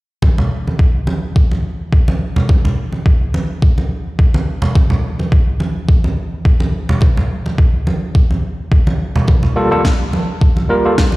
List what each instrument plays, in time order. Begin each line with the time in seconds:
0.22 kick, high conga
0.38 low conga
0.67 high conga
0.79 kick
1.07 high conga
1.36 kick
1.51 high conga
1.93 kick
2.08 high conga
2.36 low conga
2.49 kick, high conga
2.65 low conga
2.92 high conga
3.06 kick
3.34 high conga
3.62 kick
3.78 high conga
4.19 kick
4.34 high conga
4.62 low conga
4.75 kick, high conga
4.90 low conga
5.19 high conga
5.32 kick
5.60 high conga
5.89 kick
6.04 high conga
6.45 kick
6.60 high conga
6.89 low conga
7.01 kick, high conga
7.17 low conga
7.46 high conga
7.58 kick
7.87 high conga
8.15 kick
8.31 high conga
8.72 kick
8.87 high conga
9.16 low conga
9.28 kick, high conga
9.43 low conga
9.56 tine electric piano G3 A#3 F4 A4
9.71 tine electric piano G3 A#3 F4 A4, high conga
9.85 kick, snare
10.13 high conga
10.41 kick
10.57 high conga
10.69 tine electric piano G3 A#3 F4 A#4
10.85 tine electric piano G3 A#3 F4 A4
10.98 kick, snare
11.12 high conga